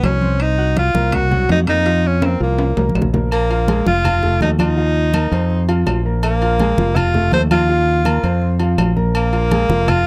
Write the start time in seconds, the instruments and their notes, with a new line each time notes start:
Already playing: grand piano B3 B4 B5
0.03 fingered electric bass C2, tenor saxophone C#4, high conga, high timbale, low timbale, claves
0.21 grand piano C4 C5 C6, high conga
0.40 tenor saxophone D#4, high conga, high timbale, claves
0.58 grand piano F#4 F#5 F#6, high conga
0.77 tenor saxophone F4, high conga, high timbale, low timbale
0.94 fingered electric bass C2, grand piano A#3 A#4 A#5, high conga
1.12 tenor saxophone F#4, high conga, low conga, high timbale, claves
1.31 grand piano F#3 F#4 F#5, high conga, low conga
1.49 fingered electric bass F2, tenor saxophone D#4, high conga, high timbale, low timbale
1.67 grand piano A#3 A#4 A#5, tenor saxophone D#4, high conga, high timbale, claves
1.86 grand piano F3 F4 F5, high conga, high timbale
2.04 tenor saxophone C#4, high conga
2.22 grand piano A#3 A#4 A#5, tenor saxophone C4, high conga, high timbale, claves
2.40 fingered electric bass C2, grand piano F3 F4 F5, tenor saxophone A#3, high conga
2.58 high conga, high timbale
2.77 fingered electric bass C2, grand piano A#3 A#4 A#5, high conga, low timbale
2.89 high conga
2.95 fingered electric bass A#1, low timbale, claves
3.02 low conga
3.13 grand piano A#3 A#4 A#5, low conga, low timbale
3.31 tenor saxophone A#3, high conga, low agogo, claves
3.50 grand piano F4 F5 F6, high conga, low agogo
3.67 grand piano G#3 G#4 G#5, high conga, low timbale, low agogo
3.86 fingered electric bass F1, grand piano F3 F4 F5, tenor saxophone F4, high conga
4.04 high conga, low conga, low agogo, claves
4.23 grand piano A3 A4 A5, high conga, low conga
4.41 fingered electric bass D#2, tenor saxophone D#4, high conga, low timbale, low agogo
4.59 grand piano F3 F4 F5, tenor saxophone D#4, high conga, low agogo, claves
4.77 grand piano F3 F4 F5, high conga
4.96 high conga
5.13 grand piano A#3 A#4 A#5, high conga, low timbale, low agogo, claves
5.32 fingered electric bass F2, grand piano C4 C5 C6, high conga, low agogo
5.50 high conga
5.68 grand piano F3 F4 F5, high conga, low agogo
5.86 fingered electric bass A#1, high conga, low timbale, low agogo, claves
6.05 grand piano A#3 A#4 A#5
6.23 tenor saxophone A#3, high conga, low agogo, claves
6.41 grand piano F4 F5 F6, high conga, low agogo
6.60 grand piano G#3 G#4 G#5, high conga, low timbale, low agogo
6.78 fingered electric bass F1, grand piano F3 F4 F5, high conga
6.96 tenor saxophone F4, high conga, low conga, low agogo, claves
7.14 grand piano A3 A4 A5, high conga, low conga
7.32 fingered electric bass D#2, tenor saxophone C5, high conga, low timbale, low agogo
7.51 grand piano F3 F4 F5, tenor saxophone F4, high conga, low agogo, claves
7.69 grand piano F3 F4 F5, high conga
7.87 high conga
8.05 grand piano A#3 A#4 A#5, high conga, low timbale, low agogo, claves
8.23 fingered electric bass F2, grand piano C4 C5 C6, high conga, low agogo
8.42 high conga
8.60 grand piano F3 F4 F5, high conga, low agogo
8.78 fingered electric bass A#1, high conga, low timbale, low agogo, claves
8.96 grand piano A#3 A#4 A#5, high conga
9.15 tenor saxophone A#3, high conga, low agogo, claves
9.33 grand piano F4 F5 F6, high conga, low agogo
9.51 grand piano G#3 G#4 G#5, high conga, low timbale, low agogo
9.69 fingered electric bass F1, grand piano F3 F4 F5, high conga
9.88 tenor saxophone F4, high conga, low conga, low agogo, claves